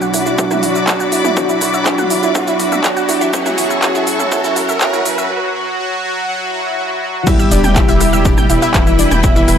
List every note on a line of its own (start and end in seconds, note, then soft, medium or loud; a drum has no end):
0.00 0.40 B1 medium
0.00 0.36 B2 medium
0.00 0.36 F#3 medium
0.00 0.36 D4 medium
0.00 0.36 F#4 loud
0.00 3.29 F#4 medium
0.00 3.29 D5 medium
0.00 0.06 F#5 medium
0.00 3.29 B5 medium
0.00 3.29 D6 medium
0.00 riser medium
0.00 shaker soft
0.14 0.25 E4 medium
0.14 cross-stick medium
0.14 open hi-hat loud
0.14 shaker medium
0.26 0.34 E4 medium
0.26 shaker soft
0.38 0.48 A1 loud
0.38 1.35 B2 medium
0.38 1.35 F#3 medium
0.38 1.35 D4 medium
0.38 0.50 E4 medium
0.38 1.35 F#4 loud
0.38 kick loud
0.38 shaker medium
0.51 0.59 E4 loud
0.51 cross-stick medium
0.51 mid tom medium
0.51 shaker soft
0.63 0.72 B1 loud
0.63 0.71 E4 medium
0.63 open hi-hat loud
0.63 shaker medium
0.75 0.83 E5 medium
0.75 shaker soft
0.88 1.20 B1 medium
0.88 0.99 D4 medium
0.88 kick loud
0.88 cross-stick medium
0.88 clap loud
0.88 shaker medium
1.00 1.05 F#5 medium
1.00 shaker soft
1.12 1.24 E4 medium
1.12 open hi-hat loud
1.12 shaker medium
1.24 1.57 B1 loud
1.24 1.32 E4 medium
1.24 cross-stick medium
1.24 mid tom loud
1.24 shaker soft
1.37 2.33 B2 medium
1.37 2.33 F#3 medium
1.37 2.33 D4 medium
1.37 1.48 E4 medium
1.37 2.33 F#4 loud
1.37 kick loud
1.37 shaker medium
1.49 1.57 E4 medium
1.49 shaker soft
1.61 1.94 B1 loud
1.61 1.69 E4 medium
1.61 cross-stick medium
1.61 open hi-hat loud
1.61 shaker medium
1.74 1.82 E5 medium
1.74 shaker soft
1.86 1.98 D4 medium
1.86 kick loud
1.86 clap loud
1.86 shaker medium
1.98 2.37 B1 medium
1.98 2.03 F#5 loud
1.98 cross-stick medium
1.98 mid tom loud
1.98 shaker soft
2.10 2.22 E4 medium
2.10 open hi-hat loud
2.10 shaker medium
2.23 2.31 E4 medium
2.23 shaker soft
2.35 2.45 A1 loud
2.35 3.32 B2 medium
2.35 3.31 F#3 medium
2.35 3.31 D4 medium
2.35 2.46 E4 medium
2.35 3.31 F#4 loud
2.35 kick loud
2.35 cross-stick medium
2.35 shaker medium
2.47 2.55 E4 loud
2.47 shaker soft
2.59 2.69 B1 loud
2.59 2.68 E4 medium
2.59 open hi-hat loud
2.59 shaker medium
2.72 2.80 E5 medium
2.72 cross-stick medium
2.72 mid tom medium
2.72 shaker soft
2.84 3.17 B1 medium
2.84 2.96 D4 medium
2.84 kick loud
2.84 clap loud
2.84 shaker medium
2.97 3.01 F#5 loud
2.97 shaker soft
3.09 3.20 E4 medium
3.09 cross-stick medium
3.09 open hi-hat loud
3.09 shaker medium
3.21 3.53 A1 loud
3.21 3.29 E4 medium
3.21 shaker soft
3.33 3.81 B2 medium
3.33 3.81 F#3 medium
3.33 3.81 C#4 medium
3.33 5.28 E4 medium
3.33 3.45 E4 medium
3.33 3.81 F#4 loud
3.33 5.28 C#5 medium
3.33 5.28 A5 medium
3.33 5.28 C#6 medium
3.33 kick loud
3.33 shaker medium
3.46 3.54 E4 loud
3.46 cross-stick medium
3.46 mid tom loud
3.46 shaker soft
3.58 3.90 A1 loud
3.58 3.66 E4 medium
3.58 open hi-hat loud
3.58 shaker medium
3.70 3.78 E5 medium
3.70 shaker soft
3.83 4.30 B2 medium
3.83 4.30 F#3 medium
3.83 4.30 C#4 loud
3.83 3.94 E4 medium
3.83 4.30 F#4 loud
3.83 kick loud
3.83 cross-stick medium
3.83 clap loud
3.83 shaker medium
3.95 4.33 A1 medium
3.95 4.03 E4 loud
3.95 shaker soft
4.07 4.15 E4 medium
4.07 open hi-hat loud
4.07 shaker medium
4.20 4.27 E5 medium
4.20 cross-stick soft
4.20 mid tom loud
4.20 shaker soft
4.32 4.41 G1 loud
4.32 4.79 B2 medium
4.32 4.79 F#3 medium
4.32 4.79 C#4 loud
4.32 4.43 E4 medium
4.32 4.79 F#4 loud
4.32 kick loud
4.32 shaker medium
4.44 4.52 E4 loud
4.44 shaker soft
4.56 4.66 A1 loud
4.56 4.64 E4 medium
4.56 cross-stick soft
4.56 open hi-hat loud
4.56 shaker medium
4.69 4.77 E5 medium
4.69 shaker soft
4.81 5.13 A1 medium
4.81 5.28 B2 medium
4.81 5.28 F#3 medium
4.81 5.28 C#4 loud
4.81 4.92 E4 medium
4.81 5.28 F#4 loud
4.81 kick loud
4.81 clap loud
4.81 shaker medium
4.93 5.01 E4 loud
4.93 cross-stick soft
4.93 mid tom medium
4.93 shaker soft
5.06 5.14 E4 medium
5.06 open hi-hat loud
5.06 shaker medium
5.18 5.30 A1 loud
5.18 5.26 E5 medium
5.18 shaker soft
5.30 5.53 F#3 medium
5.30 5.53 F#4 loud
5.55 5.77 F#3 medium
5.55 5.77 F#4 loud
5.79 6.02 F#3 medium
5.79 6.02 F#4 loud
6.04 6.27 F#3 medium
6.04 6.27 F#4 loud
6.28 6.51 F#3 medium
6.28 6.51 F#4 loud
6.28 swell medium
6.53 6.76 F#3 medium
6.53 6.76 F#4 loud
6.78 7.00 F#3 medium
6.78 7.00 F#4 loud
7.02 7.25 F#3 medium
7.02 7.25 F#4 loud
7.27 8.47 B2 medium
7.27 8.47 G3 medium
7.27 8.65 G3 medium
7.27 7.35 E4 medium
7.27 9.58 E4 medium
7.27 8.47 E4 medium
7.27 8.65 G4 loud
7.27 9.58 B4 medium
7.27 7.35 E5 medium
7.27 9.58 G5 medium
7.27 9.58 B5 medium
7.27 kick loud
7.27 cross-stick soft
7.27 crash loud
7.27 impact medium
7.27 shaker medium
7.39 7.47 E5 medium
7.39 7.47 E6 medium
7.39 shaker soft
7.51 7.84 E1 loud
7.51 7.63 D4 medium
7.51 7.63 D5 medium
7.51 open hi-hat loud
7.51 shaker medium
7.64 7.69 G5 loud
7.64 7.69 G6 medium
7.64 cross-stick soft
7.64 mid tom medium
7.64 shaker soft
7.76 7.87 E4 medium
7.76 7.87 E5 medium
7.76 kick loud
7.76 clap loud
7.76 shaker medium
7.88 8.27 E1 medium
7.88 7.96 E4 loud
7.88 7.96 E5 medium
7.88 shaker soft
8.01 8.09 E4 medium
8.01 8.09 E5 medium
8.01 cross-stick medium
8.01 open hi-hat loud
8.01 shaker medium
8.13 8.21 E5 medium
8.13 8.21 E6 soft
8.13 shaker soft
8.25 8.35 D1 loud
8.25 8.37 D4 medium
8.25 8.37 D5 medium
8.25 kick loud
8.25 shaker medium
8.38 8.42 G5 loud
8.38 8.42 G6 medium
8.38 cross-stick soft
8.38 mid tom medium
8.38 shaker soft
8.50 8.59 E1 medium
8.50 9.21 B2 medium
8.50 9.21 G3 medium
8.50 8.61 E4 medium
8.50 9.21 E4 medium
8.50 8.61 E5 medium
8.50 open hi-hat loud
8.50 shaker medium
8.62 8.70 E4 loud
8.62 8.70 E5 medium
8.62 shaker soft
8.74 9.07 E1 medium
8.74 9.58 E3 medium
8.74 9.58 E4 loud
8.74 8.82 E4 medium
8.74 8.82 E5 medium
8.74 kick loud
8.74 cross-stick medium
8.74 clap loud
8.74 shaker medium
8.87 8.95 E5 medium
8.87 8.95 E6 medium
8.87 shaker soft
8.99 9.11 D4 medium
8.99 9.11 D5 medium
8.99 open hi-hat loud
8.99 shaker medium
9.11 9.44 E1 loud
9.11 9.16 G5 loud
9.11 9.16 G6 medium
9.11 cross-stick medium
9.11 mid tom medium
9.11 shaker soft
9.23 9.58 B2 medium
9.23 9.58 G3 medium
9.23 9.35 E4 medium
9.23 9.58 E4 loud
9.23 9.35 E5 medium
9.23 kick loud
9.23 shaker medium
9.36 9.44 E4 loud
9.36 9.44 E5 medium
9.36 shaker soft
9.48 9.58 E1 loud
9.48 9.56 E4 medium
9.48 9.56 E5 medium
9.48 cross-stick medium
9.48 open hi-hat loud
9.48 shaker medium